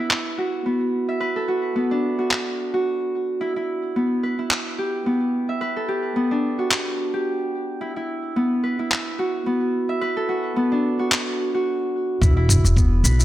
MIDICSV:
0, 0, Header, 1, 4, 480
1, 0, Start_track
1, 0, Key_signature, 1, "minor"
1, 0, Tempo, 550459
1, 1053, Time_signature, 4, 2, 24, 8
1, 11553, End_track
2, 0, Start_track
2, 0, Title_t, "Harp"
2, 0, Program_c, 0, 46
2, 0, Note_on_c, 0, 59, 68
2, 0, Note_on_c, 0, 62, 69
2, 0, Note_on_c, 0, 64, 67
2, 0, Note_on_c, 0, 67, 67
2, 0, Note_on_c, 0, 71, 68
2, 265, Note_off_c, 0, 62, 0
2, 332, Note_on_c, 0, 66, 67
2, 384, Note_off_c, 0, 67, 0
2, 569, Note_off_c, 0, 59, 0
2, 573, Note_on_c, 0, 59, 66
2, 947, Note_on_c, 0, 76, 67
2, 1047, Note_off_c, 0, 71, 0
2, 1050, Note_on_c, 0, 71, 90
2, 1186, Note_on_c, 0, 69, 67
2, 1288, Note_off_c, 0, 66, 0
2, 1292, Note_on_c, 0, 66, 65
2, 1528, Note_off_c, 0, 59, 0
2, 1532, Note_on_c, 0, 59, 69
2, 1667, Note_on_c, 0, 62, 69
2, 1903, Note_off_c, 0, 66, 0
2, 1907, Note_on_c, 0, 66, 61
2, 2261, Note_off_c, 0, 64, 0
2, 2383, Note_off_c, 0, 66, 0
2, 2387, Note_on_c, 0, 66, 71
2, 2449, Note_off_c, 0, 76, 0
2, 2837, Note_off_c, 0, 71, 0
2, 2971, Note_on_c, 0, 64, 75
2, 3101, Note_off_c, 0, 69, 0
2, 3103, Note_off_c, 0, 64, 0
2, 3107, Note_on_c, 0, 64, 64
2, 3450, Note_off_c, 0, 59, 0
2, 3453, Note_on_c, 0, 59, 65
2, 3692, Note_on_c, 0, 71, 65
2, 3822, Note_off_c, 0, 64, 0
2, 3826, Note_on_c, 0, 64, 61
2, 4108, Note_off_c, 0, 62, 0
2, 4173, Note_on_c, 0, 67, 64
2, 4226, Note_off_c, 0, 66, 0
2, 4410, Note_off_c, 0, 59, 0
2, 4414, Note_on_c, 0, 59, 68
2, 4787, Note_on_c, 0, 76, 63
2, 4888, Note_off_c, 0, 71, 0
2, 4892, Note_on_c, 0, 71, 93
2, 5027, Note_on_c, 0, 69, 66
2, 5128, Note_off_c, 0, 67, 0
2, 5131, Note_on_c, 0, 67, 65
2, 5367, Note_off_c, 0, 59, 0
2, 5371, Note_on_c, 0, 59, 71
2, 5503, Note_on_c, 0, 62, 69
2, 5744, Note_on_c, 0, 66, 59
2, 5796, Note_off_c, 0, 67, 0
2, 6103, Note_off_c, 0, 64, 0
2, 6223, Note_on_c, 0, 67, 68
2, 6276, Note_off_c, 0, 66, 0
2, 6289, Note_off_c, 0, 76, 0
2, 6678, Note_off_c, 0, 71, 0
2, 6810, Note_on_c, 0, 64, 72
2, 6941, Note_off_c, 0, 64, 0
2, 6942, Note_off_c, 0, 69, 0
2, 6944, Note_on_c, 0, 64, 64
2, 7288, Note_off_c, 0, 59, 0
2, 7292, Note_on_c, 0, 59, 72
2, 7530, Note_on_c, 0, 71, 69
2, 7662, Note_off_c, 0, 64, 0
2, 7666, Note_on_c, 0, 64, 63
2, 7944, Note_off_c, 0, 62, 0
2, 8013, Note_on_c, 0, 66, 69
2, 8065, Note_off_c, 0, 67, 0
2, 8248, Note_off_c, 0, 59, 0
2, 8251, Note_on_c, 0, 59, 70
2, 8625, Note_on_c, 0, 76, 67
2, 8728, Note_off_c, 0, 71, 0
2, 8732, Note_on_c, 0, 71, 92
2, 8865, Note_on_c, 0, 69, 70
2, 8967, Note_off_c, 0, 66, 0
2, 8970, Note_on_c, 0, 66, 71
2, 9208, Note_off_c, 0, 59, 0
2, 9211, Note_on_c, 0, 59, 75
2, 9346, Note_on_c, 0, 62, 67
2, 9582, Note_off_c, 0, 66, 0
2, 9586, Note_on_c, 0, 66, 63
2, 9943, Note_off_c, 0, 64, 0
2, 10063, Note_off_c, 0, 66, 0
2, 10067, Note_on_c, 0, 66, 71
2, 10127, Note_off_c, 0, 76, 0
2, 10519, Note_off_c, 0, 71, 0
2, 10651, Note_on_c, 0, 64, 89
2, 10780, Note_off_c, 0, 64, 0
2, 10780, Note_off_c, 0, 69, 0
2, 10784, Note_on_c, 0, 64, 79
2, 11128, Note_off_c, 0, 59, 0
2, 11132, Note_on_c, 0, 59, 73
2, 11371, Note_on_c, 0, 71, 74
2, 11499, Note_off_c, 0, 64, 0
2, 11503, Note_on_c, 0, 64, 70
2, 11553, Note_off_c, 0, 59, 0
2, 11553, Note_off_c, 0, 62, 0
2, 11553, Note_off_c, 0, 64, 0
2, 11553, Note_off_c, 0, 66, 0
2, 11553, Note_off_c, 0, 71, 0
2, 11553, End_track
3, 0, Start_track
3, 0, Title_t, "Upright bass"
3, 0, Program_c, 1, 32
3, 10653, Note_on_c, 1, 28, 95
3, 10983, Note_off_c, 1, 28, 0
3, 11026, Note_on_c, 1, 28, 82
3, 11338, Note_off_c, 1, 28, 0
3, 11369, Note_on_c, 1, 35, 89
3, 11553, Note_off_c, 1, 35, 0
3, 11553, End_track
4, 0, Start_track
4, 0, Title_t, "Drums"
4, 92, Note_on_c, 9, 39, 65
4, 180, Note_off_c, 9, 39, 0
4, 2014, Note_on_c, 9, 39, 64
4, 2101, Note_off_c, 9, 39, 0
4, 3931, Note_on_c, 9, 39, 61
4, 4018, Note_off_c, 9, 39, 0
4, 5852, Note_on_c, 9, 39, 68
4, 5940, Note_off_c, 9, 39, 0
4, 7773, Note_on_c, 9, 39, 66
4, 7861, Note_off_c, 9, 39, 0
4, 9694, Note_on_c, 9, 39, 71
4, 9781, Note_off_c, 9, 39, 0
4, 10653, Note_on_c, 9, 36, 102
4, 10661, Note_on_c, 9, 82, 36
4, 10740, Note_off_c, 9, 36, 0
4, 10748, Note_off_c, 9, 82, 0
4, 10892, Note_on_c, 9, 45, 84
4, 10900, Note_on_c, 9, 82, 77
4, 10980, Note_off_c, 9, 45, 0
4, 10987, Note_off_c, 9, 82, 0
4, 11033, Note_on_c, 9, 82, 42
4, 11120, Note_off_c, 9, 82, 0
4, 11132, Note_on_c, 9, 36, 101
4, 11137, Note_on_c, 9, 82, 34
4, 11219, Note_off_c, 9, 36, 0
4, 11224, Note_off_c, 9, 82, 0
4, 11377, Note_on_c, 9, 82, 83
4, 11464, Note_off_c, 9, 82, 0
4, 11510, Note_on_c, 9, 82, 41
4, 11553, Note_off_c, 9, 82, 0
4, 11553, End_track
0, 0, End_of_file